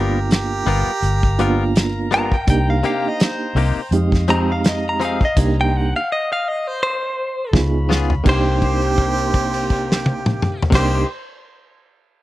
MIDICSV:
0, 0, Header, 1, 9, 480
1, 0, Start_track
1, 0, Key_signature, -3, "minor"
1, 0, Tempo, 722892
1, 1645, Time_signature, 4, 2, 24, 8
1, 8118, End_track
2, 0, Start_track
2, 0, Title_t, "Clean electric guitar"
2, 0, Program_c, 0, 27
2, 1421, Note_on_c, 0, 82, 104
2, 1543, Note_off_c, 0, 82, 0
2, 1552, Note_on_c, 0, 79, 75
2, 1649, Note_off_c, 0, 79, 0
2, 1660, Note_on_c, 0, 79, 89
2, 1783, Note_off_c, 0, 79, 0
2, 1793, Note_on_c, 0, 77, 79
2, 1889, Note_off_c, 0, 77, 0
2, 1900, Note_on_c, 0, 77, 80
2, 2045, Note_off_c, 0, 77, 0
2, 2045, Note_on_c, 0, 75, 80
2, 2146, Note_off_c, 0, 75, 0
2, 2146, Note_on_c, 0, 72, 96
2, 2602, Note_off_c, 0, 72, 0
2, 2857, Note_on_c, 0, 82, 107
2, 2981, Note_off_c, 0, 82, 0
2, 3000, Note_on_c, 0, 77, 91
2, 3109, Note_off_c, 0, 77, 0
2, 3109, Note_on_c, 0, 75, 82
2, 3227, Note_off_c, 0, 75, 0
2, 3248, Note_on_c, 0, 82, 80
2, 3336, Note_off_c, 0, 82, 0
2, 3351, Note_on_c, 0, 77, 72
2, 3468, Note_off_c, 0, 77, 0
2, 3485, Note_on_c, 0, 75, 73
2, 3575, Note_off_c, 0, 75, 0
2, 3723, Note_on_c, 0, 79, 77
2, 3829, Note_off_c, 0, 79, 0
2, 3829, Note_on_c, 0, 78, 85
2, 3947, Note_off_c, 0, 78, 0
2, 3959, Note_on_c, 0, 77, 85
2, 4052, Note_off_c, 0, 77, 0
2, 4066, Note_on_c, 0, 75, 83
2, 4185, Note_off_c, 0, 75, 0
2, 4200, Note_on_c, 0, 77, 90
2, 4304, Note_off_c, 0, 77, 0
2, 4304, Note_on_c, 0, 75, 89
2, 4431, Note_off_c, 0, 75, 0
2, 4431, Note_on_c, 0, 72, 77
2, 4528, Note_off_c, 0, 72, 0
2, 4535, Note_on_c, 0, 72, 106
2, 4995, Note_off_c, 0, 72, 0
2, 5505, Note_on_c, 0, 72, 103
2, 7053, Note_off_c, 0, 72, 0
2, 7140, Note_on_c, 0, 72, 99
2, 7343, Note_off_c, 0, 72, 0
2, 8118, End_track
3, 0, Start_track
3, 0, Title_t, "Horn section"
3, 0, Program_c, 1, 61
3, 0, Note_on_c, 1, 70, 69
3, 0, Note_on_c, 1, 77, 64
3, 0, Note_on_c, 1, 82, 80
3, 1624, Note_off_c, 1, 77, 0
3, 1625, Note_off_c, 1, 70, 0
3, 1626, Note_off_c, 1, 82, 0
3, 1639, Note_on_c, 1, 82, 82
3, 1643, Note_on_c, 1, 72, 72
3, 1645, Note_on_c, 1, 79, 70
3, 2592, Note_off_c, 1, 82, 0
3, 2594, Note_off_c, 1, 72, 0
3, 2595, Note_off_c, 1, 79, 0
3, 2607, Note_on_c, 1, 75, 75
3, 2608, Note_on_c, 1, 77, 64
3, 3556, Note_off_c, 1, 75, 0
3, 3556, Note_off_c, 1, 77, 0
3, 3567, Note_on_c, 1, 72, 67
3, 3572, Note_on_c, 1, 82, 74
3, 3957, Note_off_c, 1, 72, 0
3, 3959, Note_off_c, 1, 82, 0
3, 4997, Note_on_c, 1, 73, 65
3, 5000, Note_on_c, 1, 83, 73
3, 5001, Note_on_c, 1, 77, 61
3, 5475, Note_off_c, 1, 73, 0
3, 5477, Note_off_c, 1, 77, 0
3, 5477, Note_off_c, 1, 83, 0
3, 5485, Note_on_c, 1, 79, 77
3, 5487, Note_on_c, 1, 70, 68
3, 5487, Note_on_c, 1, 72, 63
3, 7043, Note_off_c, 1, 79, 0
3, 7044, Note_off_c, 1, 70, 0
3, 7044, Note_off_c, 1, 72, 0
3, 7119, Note_on_c, 1, 72, 55
3, 7123, Note_on_c, 1, 70, 62
3, 7125, Note_on_c, 1, 79, 72
3, 7323, Note_off_c, 1, 72, 0
3, 7325, Note_off_c, 1, 70, 0
3, 7326, Note_off_c, 1, 79, 0
3, 8118, End_track
4, 0, Start_track
4, 0, Title_t, "Harmonica"
4, 0, Program_c, 2, 22
4, 0, Note_on_c, 2, 67, 67
4, 204, Note_off_c, 2, 67, 0
4, 218, Note_on_c, 2, 67, 100
4, 1279, Note_off_c, 2, 67, 0
4, 5501, Note_on_c, 2, 67, 111
4, 7051, Note_off_c, 2, 67, 0
4, 7136, Note_on_c, 2, 67, 108
4, 7340, Note_off_c, 2, 67, 0
4, 8118, End_track
5, 0, Start_track
5, 0, Title_t, "Reed electric piano"
5, 0, Program_c, 3, 4
5, 0, Note_on_c, 3, 58, 88
5, 0, Note_on_c, 3, 59, 81
5, 0, Note_on_c, 3, 62, 77
5, 0, Note_on_c, 3, 65, 93
5, 508, Note_off_c, 3, 58, 0
5, 509, Note_off_c, 3, 59, 0
5, 509, Note_off_c, 3, 65, 0
5, 510, Note_off_c, 3, 62, 0
5, 921, Note_on_c, 3, 58, 82
5, 922, Note_on_c, 3, 59, 73
5, 923, Note_on_c, 3, 62, 76
5, 923, Note_on_c, 3, 65, 97
5, 1520, Note_off_c, 3, 58, 0
5, 1520, Note_off_c, 3, 59, 0
5, 1520, Note_off_c, 3, 62, 0
5, 1521, Note_off_c, 3, 65, 0
5, 1642, Note_on_c, 3, 58, 77
5, 1645, Note_on_c, 3, 63, 71
5, 1647, Note_on_c, 3, 62, 69
5, 1649, Note_on_c, 3, 67, 79
5, 2429, Note_off_c, 3, 58, 0
5, 2431, Note_off_c, 3, 63, 0
5, 2432, Note_off_c, 3, 62, 0
5, 2433, Note_off_c, 3, 67, 0
5, 2605, Note_on_c, 3, 56, 66
5, 2605, Note_on_c, 3, 60, 64
5, 2609, Note_on_c, 3, 63, 69
5, 2610, Note_on_c, 3, 67, 83
5, 2805, Note_off_c, 3, 56, 0
5, 2805, Note_off_c, 3, 60, 0
5, 2807, Note_off_c, 3, 63, 0
5, 2807, Note_off_c, 3, 67, 0
5, 2848, Note_on_c, 3, 56, 75
5, 2848, Note_on_c, 3, 60, 65
5, 2851, Note_on_c, 3, 63, 63
5, 2851, Note_on_c, 3, 67, 75
5, 3442, Note_off_c, 3, 56, 0
5, 3443, Note_off_c, 3, 60, 0
5, 3444, Note_off_c, 3, 63, 0
5, 3444, Note_off_c, 3, 67, 0
5, 3567, Note_on_c, 3, 58, 76
5, 3571, Note_on_c, 3, 62, 65
5, 3572, Note_on_c, 3, 63, 62
5, 3572, Note_on_c, 3, 67, 82
5, 3961, Note_off_c, 3, 58, 0
5, 3963, Note_off_c, 3, 62, 0
5, 3963, Note_off_c, 3, 63, 0
5, 3963, Note_off_c, 3, 67, 0
5, 5000, Note_on_c, 3, 59, 78
5, 5003, Note_on_c, 3, 63, 71
5, 5005, Note_on_c, 3, 68, 82
5, 5006, Note_on_c, 3, 65, 75
5, 5402, Note_off_c, 3, 59, 0
5, 5403, Note_off_c, 3, 63, 0
5, 5404, Note_off_c, 3, 65, 0
5, 5404, Note_off_c, 3, 68, 0
5, 5469, Note_on_c, 3, 58, 75
5, 5476, Note_on_c, 3, 62, 74
5, 5483, Note_on_c, 3, 63, 76
5, 5492, Note_on_c, 3, 67, 85
5, 7035, Note_off_c, 3, 58, 0
5, 7039, Note_off_c, 3, 62, 0
5, 7043, Note_off_c, 3, 63, 0
5, 7047, Note_off_c, 3, 67, 0
5, 7109, Note_on_c, 3, 58, 75
5, 7118, Note_on_c, 3, 62, 71
5, 7130, Note_on_c, 3, 63, 62
5, 7137, Note_on_c, 3, 67, 88
5, 7318, Note_off_c, 3, 58, 0
5, 7322, Note_off_c, 3, 62, 0
5, 7329, Note_off_c, 3, 63, 0
5, 7332, Note_off_c, 3, 67, 0
5, 8118, End_track
6, 0, Start_track
6, 0, Title_t, "Clean electric guitar"
6, 0, Program_c, 4, 27
6, 0, Note_on_c, 4, 55, 96
6, 0, Note_on_c, 4, 59, 90
6, 0, Note_on_c, 4, 65, 88
6, 0, Note_on_c, 4, 70, 97
6, 119, Note_off_c, 4, 55, 0
6, 121, Note_off_c, 4, 59, 0
6, 124, Note_off_c, 4, 65, 0
6, 126, Note_off_c, 4, 70, 0
6, 441, Note_on_c, 4, 55, 86
6, 447, Note_on_c, 4, 59, 92
6, 450, Note_on_c, 4, 65, 86
6, 456, Note_on_c, 4, 70, 86
6, 598, Note_off_c, 4, 55, 0
6, 601, Note_off_c, 4, 59, 0
6, 603, Note_off_c, 4, 65, 0
6, 606, Note_off_c, 4, 70, 0
6, 925, Note_on_c, 4, 55, 85
6, 929, Note_on_c, 4, 59, 84
6, 933, Note_on_c, 4, 65, 93
6, 937, Note_on_c, 4, 70, 89
6, 1080, Note_off_c, 4, 55, 0
6, 1082, Note_off_c, 4, 59, 0
6, 1084, Note_off_c, 4, 65, 0
6, 1086, Note_off_c, 4, 70, 0
6, 1402, Note_on_c, 4, 55, 84
6, 1407, Note_on_c, 4, 59, 76
6, 1410, Note_on_c, 4, 65, 83
6, 1414, Note_on_c, 4, 70, 78
6, 1558, Note_off_c, 4, 55, 0
6, 1561, Note_off_c, 4, 59, 0
6, 1563, Note_off_c, 4, 65, 0
6, 1565, Note_off_c, 4, 70, 0
6, 1882, Note_on_c, 4, 48, 74
6, 1888, Note_on_c, 4, 58, 79
6, 1891, Note_on_c, 4, 63, 78
6, 1894, Note_on_c, 4, 67, 95
6, 2039, Note_off_c, 4, 48, 0
6, 2042, Note_off_c, 4, 58, 0
6, 2043, Note_off_c, 4, 63, 0
6, 2045, Note_off_c, 4, 67, 0
6, 2364, Note_on_c, 4, 48, 74
6, 2370, Note_on_c, 4, 58, 74
6, 2373, Note_on_c, 4, 63, 89
6, 2378, Note_on_c, 4, 67, 79
6, 2519, Note_off_c, 4, 48, 0
6, 2523, Note_off_c, 4, 58, 0
6, 2524, Note_off_c, 4, 63, 0
6, 2527, Note_off_c, 4, 67, 0
6, 2842, Note_on_c, 4, 53, 72
6, 2847, Note_on_c, 4, 60, 80
6, 2850, Note_on_c, 4, 63, 81
6, 2854, Note_on_c, 4, 68, 74
6, 2998, Note_off_c, 4, 53, 0
6, 3001, Note_off_c, 4, 60, 0
6, 3002, Note_off_c, 4, 63, 0
6, 3005, Note_off_c, 4, 68, 0
6, 3318, Note_on_c, 4, 53, 76
6, 3323, Note_on_c, 4, 60, 71
6, 3327, Note_on_c, 4, 63, 84
6, 3332, Note_on_c, 4, 68, 81
6, 3476, Note_off_c, 4, 53, 0
6, 3479, Note_off_c, 4, 60, 0
6, 3481, Note_off_c, 4, 63, 0
6, 3483, Note_off_c, 4, 68, 0
6, 5239, Note_on_c, 4, 49, 79
6, 5245, Note_on_c, 4, 59, 88
6, 5250, Note_on_c, 4, 65, 85
6, 5254, Note_on_c, 4, 68, 85
6, 5396, Note_off_c, 4, 49, 0
6, 5399, Note_off_c, 4, 59, 0
6, 5402, Note_off_c, 4, 65, 0
6, 5404, Note_off_c, 4, 68, 0
6, 5470, Note_on_c, 4, 48, 79
6, 5489, Note_on_c, 4, 58, 78
6, 5521, Note_on_c, 4, 67, 91
6, 7103, Note_off_c, 4, 48, 0
6, 7106, Note_on_c, 4, 48, 78
6, 7123, Note_off_c, 4, 58, 0
6, 7126, Note_on_c, 4, 58, 81
6, 7141, Note_on_c, 4, 63, 80
6, 7153, Note_off_c, 4, 67, 0
6, 7156, Note_on_c, 4, 67, 85
6, 7332, Note_off_c, 4, 48, 0
6, 7342, Note_off_c, 4, 58, 0
6, 7349, Note_off_c, 4, 63, 0
6, 7357, Note_off_c, 4, 67, 0
6, 8118, End_track
7, 0, Start_track
7, 0, Title_t, "Fingered electric bass"
7, 0, Program_c, 5, 33
7, 0, Note_on_c, 5, 31, 87
7, 418, Note_off_c, 5, 31, 0
7, 442, Note_on_c, 5, 31, 94
7, 567, Note_off_c, 5, 31, 0
7, 680, Note_on_c, 5, 31, 88
7, 1616, Note_off_c, 5, 31, 0
7, 1642, Note_on_c, 5, 36, 94
7, 1865, Note_off_c, 5, 36, 0
7, 2357, Note_on_c, 5, 36, 87
7, 2484, Note_off_c, 5, 36, 0
7, 2597, Note_on_c, 5, 41, 83
7, 3534, Note_off_c, 5, 41, 0
7, 3562, Note_on_c, 5, 36, 98
7, 3931, Note_off_c, 5, 36, 0
7, 5001, Note_on_c, 5, 37, 95
7, 5455, Note_off_c, 5, 37, 0
7, 5483, Note_on_c, 5, 36, 82
7, 7042, Note_off_c, 5, 36, 0
7, 7119, Note_on_c, 5, 36, 93
7, 7323, Note_off_c, 5, 36, 0
7, 8118, End_track
8, 0, Start_track
8, 0, Title_t, "Muted fingered electric bass strokes"
8, 577, Note_on_c, 9, 29, 35
8, 644, Note_off_c, 9, 29, 0
8, 8118, End_track
9, 0, Start_track
9, 0, Title_t, "Drums"
9, 204, Note_on_c, 9, 42, 74
9, 214, Note_on_c, 9, 38, 99
9, 270, Note_off_c, 9, 42, 0
9, 280, Note_off_c, 9, 38, 0
9, 446, Note_on_c, 9, 46, 65
9, 512, Note_off_c, 9, 46, 0
9, 683, Note_on_c, 9, 42, 74
9, 750, Note_off_c, 9, 42, 0
9, 818, Note_on_c, 9, 36, 67
9, 884, Note_off_c, 9, 36, 0
9, 922, Note_on_c, 9, 42, 60
9, 989, Note_off_c, 9, 42, 0
9, 1166, Note_on_c, 9, 42, 74
9, 1175, Note_on_c, 9, 38, 104
9, 1232, Note_off_c, 9, 42, 0
9, 1242, Note_off_c, 9, 38, 0
9, 1408, Note_on_c, 9, 42, 62
9, 1474, Note_off_c, 9, 42, 0
9, 1538, Note_on_c, 9, 36, 65
9, 1604, Note_off_c, 9, 36, 0
9, 1643, Note_on_c, 9, 42, 75
9, 1644, Note_on_c, 9, 36, 106
9, 1709, Note_off_c, 9, 42, 0
9, 1711, Note_off_c, 9, 36, 0
9, 1883, Note_on_c, 9, 42, 56
9, 1949, Note_off_c, 9, 42, 0
9, 2123, Note_on_c, 9, 42, 81
9, 2133, Note_on_c, 9, 38, 102
9, 2190, Note_off_c, 9, 42, 0
9, 2200, Note_off_c, 9, 38, 0
9, 2367, Note_on_c, 9, 46, 67
9, 2434, Note_off_c, 9, 46, 0
9, 2604, Note_on_c, 9, 42, 77
9, 2671, Note_off_c, 9, 42, 0
9, 2737, Note_on_c, 9, 36, 64
9, 2749, Note_on_c, 9, 38, 34
9, 2803, Note_off_c, 9, 36, 0
9, 2815, Note_off_c, 9, 38, 0
9, 2842, Note_on_c, 9, 42, 71
9, 2908, Note_off_c, 9, 42, 0
9, 3083, Note_on_c, 9, 42, 81
9, 3093, Note_on_c, 9, 38, 105
9, 3149, Note_off_c, 9, 42, 0
9, 3159, Note_off_c, 9, 38, 0
9, 3327, Note_on_c, 9, 42, 65
9, 3393, Note_off_c, 9, 42, 0
9, 3458, Note_on_c, 9, 36, 73
9, 3524, Note_off_c, 9, 36, 0
9, 3564, Note_on_c, 9, 36, 99
9, 3564, Note_on_c, 9, 42, 81
9, 3564, Note_on_c, 9, 49, 73
9, 3630, Note_off_c, 9, 36, 0
9, 3630, Note_off_c, 9, 42, 0
9, 3630, Note_off_c, 9, 49, 0
9, 5003, Note_on_c, 9, 36, 85
9, 5003, Note_on_c, 9, 48, 59
9, 5013, Note_on_c, 9, 38, 76
9, 5069, Note_off_c, 9, 36, 0
9, 5069, Note_off_c, 9, 48, 0
9, 5079, Note_off_c, 9, 38, 0
9, 5255, Note_on_c, 9, 38, 80
9, 5321, Note_off_c, 9, 38, 0
9, 5378, Note_on_c, 9, 43, 75
9, 5444, Note_off_c, 9, 43, 0
9, 5483, Note_on_c, 9, 36, 93
9, 5483, Note_on_c, 9, 49, 85
9, 5549, Note_off_c, 9, 36, 0
9, 5549, Note_off_c, 9, 49, 0
9, 5723, Note_on_c, 9, 36, 58
9, 5723, Note_on_c, 9, 49, 37
9, 5789, Note_off_c, 9, 36, 0
9, 5789, Note_off_c, 9, 49, 0
9, 5856, Note_on_c, 9, 57, 44
9, 5922, Note_off_c, 9, 57, 0
9, 5960, Note_on_c, 9, 49, 38
9, 5962, Note_on_c, 9, 36, 61
9, 6027, Note_off_c, 9, 49, 0
9, 6029, Note_off_c, 9, 36, 0
9, 6096, Note_on_c, 9, 57, 49
9, 6163, Note_off_c, 9, 57, 0
9, 6202, Note_on_c, 9, 36, 61
9, 6203, Note_on_c, 9, 49, 44
9, 6268, Note_off_c, 9, 36, 0
9, 6270, Note_off_c, 9, 49, 0
9, 6334, Note_on_c, 9, 57, 53
9, 6400, Note_off_c, 9, 57, 0
9, 6440, Note_on_c, 9, 49, 44
9, 6442, Note_on_c, 9, 36, 57
9, 6507, Note_off_c, 9, 49, 0
9, 6508, Note_off_c, 9, 36, 0
9, 6586, Note_on_c, 9, 38, 85
9, 6652, Note_off_c, 9, 38, 0
9, 6679, Note_on_c, 9, 48, 96
9, 6745, Note_off_c, 9, 48, 0
9, 6813, Note_on_c, 9, 47, 94
9, 6879, Note_off_c, 9, 47, 0
9, 6921, Note_on_c, 9, 45, 91
9, 6988, Note_off_c, 9, 45, 0
9, 7055, Note_on_c, 9, 43, 101
9, 7120, Note_on_c, 9, 36, 111
9, 7120, Note_on_c, 9, 49, 110
9, 7121, Note_off_c, 9, 43, 0
9, 7129, Note_on_c, 9, 38, 91
9, 7186, Note_off_c, 9, 36, 0
9, 7186, Note_off_c, 9, 49, 0
9, 7196, Note_off_c, 9, 38, 0
9, 8118, End_track
0, 0, End_of_file